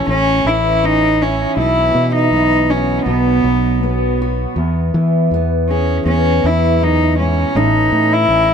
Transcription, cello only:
0, 0, Header, 1, 2, 480
1, 0, Start_track
1, 0, Key_signature, 4, "major"
1, 0, Tempo, 745342
1, 1012, Time_signature, 4, 2, 24, 8
1, 5498, End_track
2, 0, Start_track
2, 0, Title_t, "Cello"
2, 0, Program_c, 0, 42
2, 62, Note_on_c, 0, 61, 97
2, 304, Note_on_c, 0, 64, 79
2, 313, Note_off_c, 0, 61, 0
2, 546, Note_on_c, 0, 63, 93
2, 556, Note_off_c, 0, 64, 0
2, 785, Note_on_c, 0, 61, 76
2, 795, Note_off_c, 0, 63, 0
2, 1018, Note_off_c, 0, 61, 0
2, 1022, Note_on_c, 0, 64, 84
2, 1351, Note_off_c, 0, 64, 0
2, 1386, Note_on_c, 0, 63, 91
2, 1738, Note_on_c, 0, 61, 73
2, 1748, Note_off_c, 0, 63, 0
2, 1974, Note_off_c, 0, 61, 0
2, 1978, Note_on_c, 0, 59, 74
2, 2679, Note_off_c, 0, 59, 0
2, 3664, Note_on_c, 0, 61, 64
2, 3888, Note_off_c, 0, 61, 0
2, 3910, Note_on_c, 0, 61, 78
2, 4159, Note_on_c, 0, 64, 71
2, 4169, Note_off_c, 0, 61, 0
2, 4399, Note_on_c, 0, 63, 82
2, 4409, Note_off_c, 0, 64, 0
2, 4627, Note_off_c, 0, 63, 0
2, 4631, Note_on_c, 0, 61, 72
2, 4871, Note_on_c, 0, 63, 80
2, 4880, Note_off_c, 0, 61, 0
2, 5236, Note_on_c, 0, 64, 88
2, 5245, Note_off_c, 0, 63, 0
2, 5498, Note_off_c, 0, 64, 0
2, 5498, End_track
0, 0, End_of_file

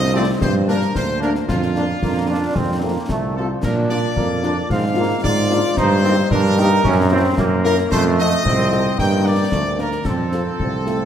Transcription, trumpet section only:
0, 0, Header, 1, 2, 480
1, 0, Start_track
1, 0, Key_signature, -2, "major"
1, 0, Tempo, 535714
1, 371, Time_signature, 2, 2, 24, 8
1, 9901, End_track
2, 0, Start_track
2, 0, Title_t, "Trumpet section"
2, 0, Program_c, 0, 61
2, 0, Note_on_c, 0, 75, 123
2, 117, Note_off_c, 0, 75, 0
2, 139, Note_on_c, 0, 74, 110
2, 245, Note_off_c, 0, 74, 0
2, 370, Note_on_c, 0, 72, 111
2, 478, Note_off_c, 0, 72, 0
2, 618, Note_on_c, 0, 70, 109
2, 838, Note_off_c, 0, 70, 0
2, 858, Note_on_c, 0, 72, 110
2, 1078, Note_off_c, 0, 72, 0
2, 1094, Note_on_c, 0, 70, 96
2, 1202, Note_off_c, 0, 70, 0
2, 1328, Note_on_c, 0, 65, 112
2, 2734, Note_off_c, 0, 65, 0
2, 3009, Note_on_c, 0, 69, 87
2, 3118, Note_off_c, 0, 69, 0
2, 3253, Note_on_c, 0, 70, 98
2, 3361, Note_off_c, 0, 70, 0
2, 3495, Note_on_c, 0, 74, 110
2, 4178, Note_off_c, 0, 74, 0
2, 4219, Note_on_c, 0, 77, 115
2, 4694, Note_on_c, 0, 74, 127
2, 4696, Note_off_c, 0, 77, 0
2, 5140, Note_off_c, 0, 74, 0
2, 5177, Note_on_c, 0, 72, 127
2, 5654, Note_off_c, 0, 72, 0
2, 5658, Note_on_c, 0, 70, 127
2, 6579, Note_off_c, 0, 70, 0
2, 6849, Note_on_c, 0, 70, 127
2, 6958, Note_off_c, 0, 70, 0
2, 7093, Note_on_c, 0, 72, 127
2, 7201, Note_off_c, 0, 72, 0
2, 7338, Note_on_c, 0, 75, 127
2, 8019, Note_off_c, 0, 75, 0
2, 8055, Note_on_c, 0, 79, 113
2, 8277, Note_off_c, 0, 79, 0
2, 8295, Note_on_c, 0, 74, 116
2, 8773, Note_off_c, 0, 74, 0
2, 8781, Note_on_c, 0, 70, 97
2, 9000, Note_off_c, 0, 70, 0
2, 9012, Note_on_c, 0, 69, 108
2, 9901, Note_off_c, 0, 69, 0
2, 9901, End_track
0, 0, End_of_file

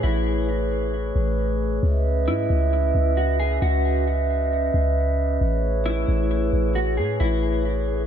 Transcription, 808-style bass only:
0, 0, Header, 1, 2, 480
1, 0, Start_track
1, 0, Key_signature, 4, "minor"
1, 0, Tempo, 447761
1, 35, Time_signature, 4, 2, 24, 8
1, 8650, End_track
2, 0, Start_track
2, 0, Title_t, "808-style bass"
2, 0, Program_c, 0, 38
2, 36, Note_on_c, 0, 33, 109
2, 1193, Note_off_c, 0, 33, 0
2, 1233, Note_on_c, 0, 33, 98
2, 1926, Note_off_c, 0, 33, 0
2, 1957, Note_on_c, 0, 37, 106
2, 2434, Note_on_c, 0, 44, 100
2, 2450, Note_off_c, 0, 37, 0
2, 2663, Note_off_c, 0, 44, 0
2, 2676, Note_on_c, 0, 37, 110
2, 3137, Note_off_c, 0, 37, 0
2, 3155, Note_on_c, 0, 37, 105
2, 3847, Note_off_c, 0, 37, 0
2, 3877, Note_on_c, 0, 37, 114
2, 5033, Note_off_c, 0, 37, 0
2, 5078, Note_on_c, 0, 37, 106
2, 5768, Note_off_c, 0, 37, 0
2, 5797, Note_on_c, 0, 33, 111
2, 6487, Note_off_c, 0, 33, 0
2, 6517, Note_on_c, 0, 33, 107
2, 6977, Note_off_c, 0, 33, 0
2, 6996, Note_on_c, 0, 33, 106
2, 7476, Note_on_c, 0, 45, 98
2, 7492, Note_off_c, 0, 33, 0
2, 7704, Note_off_c, 0, 45, 0
2, 7719, Note_on_c, 0, 33, 116
2, 8650, Note_off_c, 0, 33, 0
2, 8650, End_track
0, 0, End_of_file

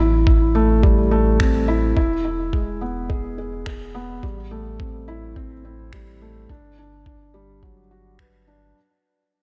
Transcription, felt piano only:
0, 0, Header, 1, 2, 480
1, 0, Start_track
1, 0, Tempo, 566038
1, 1665, Time_signature, 4, 2, 24, 8
1, 7996, End_track
2, 0, Start_track
2, 0, Title_t, "Felt piano"
2, 0, Program_c, 0, 0
2, 0, Control_c, 0, 64, 127
2, 0, Note_on_c, 0, 64, 63
2, 213, Note_off_c, 0, 64, 0
2, 225, Note_on_c, 0, 64, 64
2, 453, Note_off_c, 0, 64, 0
2, 466, Note_on_c, 0, 57, 86
2, 693, Note_off_c, 0, 57, 0
2, 703, Note_on_c, 0, 55, 71
2, 841, Note_off_c, 0, 55, 0
2, 943, Note_on_c, 0, 57, 90
2, 1172, Note_off_c, 0, 57, 0
2, 1184, Note_on_c, 0, 60, 66
2, 1413, Note_off_c, 0, 60, 0
2, 1424, Note_on_c, 0, 64, 80
2, 1652, Note_off_c, 0, 64, 0
2, 1666, Note_on_c, 0, 64, 89
2, 1675, Control_c, 0, 64, 0
2, 1802, Note_off_c, 0, 64, 0
2, 1817, Control_c, 0, 64, 127
2, 1906, Note_on_c, 0, 64, 61
2, 2133, Note_off_c, 0, 64, 0
2, 2145, Note_on_c, 0, 56, 62
2, 2373, Note_off_c, 0, 56, 0
2, 2384, Note_on_c, 0, 59, 66
2, 2613, Note_off_c, 0, 59, 0
2, 2624, Note_on_c, 0, 68, 70
2, 2853, Note_off_c, 0, 68, 0
2, 2867, Note_on_c, 0, 68, 62
2, 3094, Note_off_c, 0, 68, 0
2, 3346, Note_on_c, 0, 59, 84
2, 3573, Note_off_c, 0, 59, 0
2, 3587, Note_on_c, 0, 55, 71
2, 3597, Control_c, 0, 64, 0
2, 3723, Note_off_c, 0, 55, 0
2, 3744, Control_c, 0, 64, 127
2, 3825, Note_on_c, 0, 57, 79
2, 4053, Note_off_c, 0, 57, 0
2, 4066, Note_on_c, 0, 60, 59
2, 4294, Note_off_c, 0, 60, 0
2, 4307, Note_on_c, 0, 64, 87
2, 4534, Note_off_c, 0, 64, 0
2, 4547, Note_on_c, 0, 60, 87
2, 4683, Note_off_c, 0, 60, 0
2, 4788, Note_on_c, 0, 60, 64
2, 5015, Note_off_c, 0, 60, 0
2, 5031, Note_on_c, 0, 55, 60
2, 5256, Note_off_c, 0, 55, 0
2, 5269, Note_on_c, 0, 57, 62
2, 5495, Note_off_c, 0, 57, 0
2, 5509, Note_on_c, 0, 62, 70
2, 5515, Control_c, 0, 64, 0
2, 5677, Control_c, 0, 64, 127
2, 5735, Note_off_c, 0, 62, 0
2, 5750, Note_on_c, 0, 62, 59
2, 5974, Note_off_c, 0, 62, 0
2, 5987, Note_on_c, 0, 62, 62
2, 6214, Note_off_c, 0, 62, 0
2, 6223, Note_on_c, 0, 55, 84
2, 6452, Note_off_c, 0, 55, 0
2, 6467, Note_on_c, 0, 54, 66
2, 6603, Note_off_c, 0, 54, 0
2, 6707, Note_on_c, 0, 66, 60
2, 6934, Note_off_c, 0, 66, 0
2, 6949, Note_on_c, 0, 71, 56
2, 7084, Note_off_c, 0, 71, 0
2, 7184, Note_on_c, 0, 62, 71
2, 7413, Note_off_c, 0, 62, 0
2, 7438, Control_c, 0, 64, 0
2, 7996, End_track
0, 0, End_of_file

